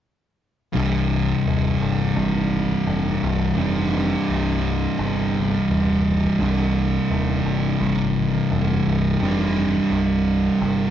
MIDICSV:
0, 0, Header, 1, 3, 480
1, 0, Start_track
1, 0, Tempo, 705882
1, 503, Time_signature, 4, 2, 24, 8
1, 7415, End_track
2, 0, Start_track
2, 0, Title_t, "Distorted electric guitar"
2, 0, Program_c, 0, 30
2, 494, Note_on_c, 0, 36, 81
2, 505, Note_on_c, 0, 43, 85
2, 514, Note_on_c, 0, 48, 79
2, 1451, Note_off_c, 0, 43, 0
2, 1458, Note_off_c, 0, 36, 0
2, 1461, Note_on_c, 0, 36, 75
2, 1465, Note_on_c, 0, 43, 84
2, 1471, Note_off_c, 0, 48, 0
2, 1474, Note_on_c, 0, 48, 81
2, 2412, Note_off_c, 0, 43, 0
2, 2420, Note_off_c, 0, 36, 0
2, 2423, Note_on_c, 0, 36, 82
2, 2432, Note_on_c, 0, 43, 90
2, 2433, Note_off_c, 0, 48, 0
2, 2436, Note_on_c, 0, 48, 95
2, 3375, Note_off_c, 0, 43, 0
2, 3383, Note_off_c, 0, 36, 0
2, 3386, Note_on_c, 0, 36, 84
2, 3394, Note_on_c, 0, 43, 80
2, 3397, Note_off_c, 0, 48, 0
2, 3399, Note_on_c, 0, 48, 82
2, 4336, Note_off_c, 0, 36, 0
2, 4336, Note_off_c, 0, 43, 0
2, 4339, Note_on_c, 0, 36, 84
2, 4346, Note_on_c, 0, 43, 91
2, 4350, Note_off_c, 0, 48, 0
2, 4353, Note_on_c, 0, 48, 90
2, 5292, Note_off_c, 0, 43, 0
2, 5297, Note_off_c, 0, 36, 0
2, 5300, Note_on_c, 0, 36, 77
2, 5309, Note_on_c, 0, 43, 86
2, 5313, Note_off_c, 0, 48, 0
2, 5315, Note_on_c, 0, 48, 84
2, 6252, Note_off_c, 0, 43, 0
2, 6256, Note_off_c, 0, 36, 0
2, 6258, Note_on_c, 0, 36, 88
2, 6265, Note_on_c, 0, 43, 95
2, 6268, Note_off_c, 0, 48, 0
2, 6271, Note_on_c, 0, 48, 84
2, 7205, Note_off_c, 0, 36, 0
2, 7208, Note_off_c, 0, 43, 0
2, 7211, Note_off_c, 0, 48, 0
2, 7218, Note_on_c, 0, 36, 80
2, 7230, Note_on_c, 0, 43, 81
2, 7233, Note_on_c, 0, 48, 87
2, 7415, Note_off_c, 0, 36, 0
2, 7415, Note_off_c, 0, 43, 0
2, 7415, Note_off_c, 0, 48, 0
2, 7415, End_track
3, 0, Start_track
3, 0, Title_t, "Picked electric bass"
3, 0, Program_c, 1, 34
3, 510, Note_on_c, 1, 24, 91
3, 898, Note_off_c, 1, 24, 0
3, 993, Note_on_c, 1, 27, 81
3, 1185, Note_off_c, 1, 27, 0
3, 1235, Note_on_c, 1, 31, 83
3, 1426, Note_off_c, 1, 31, 0
3, 1467, Note_on_c, 1, 32, 92
3, 1857, Note_off_c, 1, 32, 0
3, 1949, Note_on_c, 1, 29, 80
3, 2143, Note_off_c, 1, 29, 0
3, 2191, Note_on_c, 1, 24, 86
3, 2384, Note_off_c, 1, 24, 0
3, 2430, Note_on_c, 1, 29, 94
3, 2819, Note_off_c, 1, 29, 0
3, 2914, Note_on_c, 1, 24, 79
3, 3302, Note_off_c, 1, 24, 0
3, 3389, Note_on_c, 1, 31, 93
3, 3779, Note_off_c, 1, 31, 0
3, 3874, Note_on_c, 1, 27, 83
3, 4262, Note_off_c, 1, 27, 0
3, 4351, Note_on_c, 1, 24, 90
3, 4740, Note_off_c, 1, 24, 0
3, 4829, Note_on_c, 1, 27, 80
3, 5023, Note_off_c, 1, 27, 0
3, 5069, Note_on_c, 1, 31, 93
3, 5263, Note_off_c, 1, 31, 0
3, 5306, Note_on_c, 1, 32, 88
3, 5696, Note_off_c, 1, 32, 0
3, 5784, Note_on_c, 1, 29, 84
3, 5980, Note_off_c, 1, 29, 0
3, 6019, Note_on_c, 1, 24, 86
3, 6217, Note_off_c, 1, 24, 0
3, 6257, Note_on_c, 1, 29, 92
3, 6650, Note_off_c, 1, 29, 0
3, 6732, Note_on_c, 1, 24, 82
3, 7127, Note_off_c, 1, 24, 0
3, 7216, Note_on_c, 1, 31, 92
3, 7415, Note_off_c, 1, 31, 0
3, 7415, End_track
0, 0, End_of_file